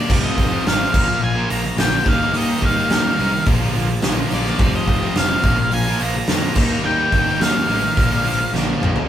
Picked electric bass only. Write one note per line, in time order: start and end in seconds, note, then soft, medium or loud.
0.09 0.29 F1 loud
0.38 0.57 F1 medium
0.66 0.85 G#1 medium
0.94 1.13 A#1 medium
1.22 1.42 A#1 loud
1.51 1.70 A#1 loud
1.78 1.98 A#1 medium
2.06 2.26 D#2 loud
2.34 2.53 D#2 loud
2.62 2.82 D#2 loud
2.90 3.10 D#2 loud
3.19 3.38 C2 medium
3.47 3.66 A#1 loud
3.75 3.94 A#1 medium
4.04 4.23 A#1 medium
4.32 4.51 A#1 loud
4.59 4.79 F1 loud
4.87 5.07 F1 medium
5.16 5.36 F1 loud
5.44 5.63 A#1 loud
5.72 5.91 A#1 loud
6.01 6.20 A#1 medium
6.29 6.48 F2 medium
6.56 6.76 D#2 loud
6.85 7.04 D#2 loud
7.12 7.32 D#2 medium
7.41 7.60 D#2 medium
7.68 7.88 A1 medium
7.97 8.17 A#1 loud
8.25 8.44 A#1 loud
8.53 8.73 A#1 medium
8.82 9.01 A#1 loud